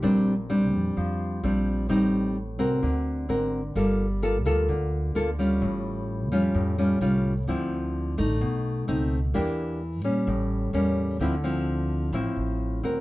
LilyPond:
<<
  \new Staff \with { instrumentName = "Nylon-string guitar" } { \time 4/4 \key d \minor \tempo 4 = 129 << { <g c' d'>8 r8 <g c' d'>2 <g c' d'>4 | <g c' ees'>4 r8 <c' fis' bes'>4. <c' fis' ais'>8 r8 | <bes f' a'>8 r8 <bes f' a'>8 <bes f' a'>4. <bes f' a'>8 <g cis' f'>8~ | <g cis' f'>4. <g cis' eis'>4 <g cis' eis'>8 <g cis' eis'>8 r8 |
<f c' e'>4. <a ees'>4. <a c' dis'>8 r8 | <bes d' g'>4 r8 <g cis'>4. <g bes cis'>4 | <f c' e'>8 <f c' e'>4. <f c' e'>4. <c' fis' bes'>8 | } \\ { bes,2 f2 | a,2 d2 | g2 d2 | a,2 a,2 |
d2 b,2 | e2 a,2 | d2 a,2 | } >> }
  \new Staff \with { instrumentName = "Upright bass" } { \clef bass \time 4/4 \key d \minor bes,,4. f,8 f,4 bes,,4 | a,,4. c,8 d,4 gis,,4 | g,,4. d,8 d,4 d,4 | a,,4. eis,8 eis,4 bis,,4 |
d,4. a,,8 b,,4 cis,4 | e,4. bes,8 a,,4 e,4 | d,2 a,,16 r16 a,,4 d,8 | }
>>